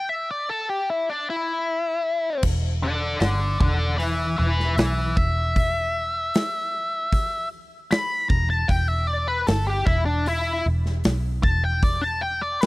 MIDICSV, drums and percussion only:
0, 0, Header, 1, 2, 480
1, 0, Start_track
1, 0, Key_signature, 1, "minor"
1, 0, Tempo, 783290
1, 1492, Time_signature, 4, 2, 24, 8
1, 7759, End_track
2, 0, Start_track
2, 0, Title_t, "Drums"
2, 1487, Note_on_c, 9, 49, 107
2, 1490, Note_on_c, 9, 36, 101
2, 1549, Note_off_c, 9, 49, 0
2, 1552, Note_off_c, 9, 36, 0
2, 1963, Note_on_c, 9, 46, 59
2, 1972, Note_on_c, 9, 38, 107
2, 2025, Note_off_c, 9, 46, 0
2, 2033, Note_off_c, 9, 38, 0
2, 2209, Note_on_c, 9, 36, 107
2, 2270, Note_off_c, 9, 36, 0
2, 2449, Note_on_c, 9, 46, 55
2, 2511, Note_off_c, 9, 46, 0
2, 2818, Note_on_c, 9, 38, 32
2, 2879, Note_off_c, 9, 38, 0
2, 2927, Note_on_c, 9, 46, 58
2, 2936, Note_on_c, 9, 38, 109
2, 2989, Note_off_c, 9, 46, 0
2, 2997, Note_off_c, 9, 38, 0
2, 3168, Note_on_c, 9, 36, 110
2, 3229, Note_off_c, 9, 36, 0
2, 3407, Note_on_c, 9, 36, 100
2, 3410, Note_on_c, 9, 46, 50
2, 3469, Note_off_c, 9, 36, 0
2, 3471, Note_off_c, 9, 46, 0
2, 3887, Note_on_c, 9, 46, 57
2, 3895, Note_on_c, 9, 38, 116
2, 3948, Note_off_c, 9, 46, 0
2, 3956, Note_off_c, 9, 38, 0
2, 4366, Note_on_c, 9, 36, 101
2, 4369, Note_on_c, 9, 46, 59
2, 4428, Note_off_c, 9, 36, 0
2, 4431, Note_off_c, 9, 46, 0
2, 4848, Note_on_c, 9, 46, 64
2, 4856, Note_on_c, 9, 38, 116
2, 4909, Note_off_c, 9, 46, 0
2, 4918, Note_off_c, 9, 38, 0
2, 5086, Note_on_c, 9, 36, 107
2, 5147, Note_off_c, 9, 36, 0
2, 5326, Note_on_c, 9, 36, 100
2, 5327, Note_on_c, 9, 46, 60
2, 5387, Note_off_c, 9, 36, 0
2, 5388, Note_off_c, 9, 46, 0
2, 5804, Note_on_c, 9, 46, 61
2, 5812, Note_on_c, 9, 38, 109
2, 5865, Note_off_c, 9, 46, 0
2, 5874, Note_off_c, 9, 38, 0
2, 6046, Note_on_c, 9, 36, 107
2, 6107, Note_off_c, 9, 36, 0
2, 6288, Note_on_c, 9, 46, 54
2, 6349, Note_off_c, 9, 46, 0
2, 6653, Note_on_c, 9, 38, 33
2, 6714, Note_off_c, 9, 38, 0
2, 6765, Note_on_c, 9, 46, 57
2, 6773, Note_on_c, 9, 38, 116
2, 6826, Note_off_c, 9, 46, 0
2, 6834, Note_off_c, 9, 38, 0
2, 7007, Note_on_c, 9, 36, 110
2, 7068, Note_off_c, 9, 36, 0
2, 7247, Note_on_c, 9, 36, 103
2, 7252, Note_on_c, 9, 46, 54
2, 7309, Note_off_c, 9, 36, 0
2, 7313, Note_off_c, 9, 46, 0
2, 7731, Note_on_c, 9, 46, 59
2, 7740, Note_on_c, 9, 38, 118
2, 7759, Note_off_c, 9, 38, 0
2, 7759, Note_off_c, 9, 46, 0
2, 7759, End_track
0, 0, End_of_file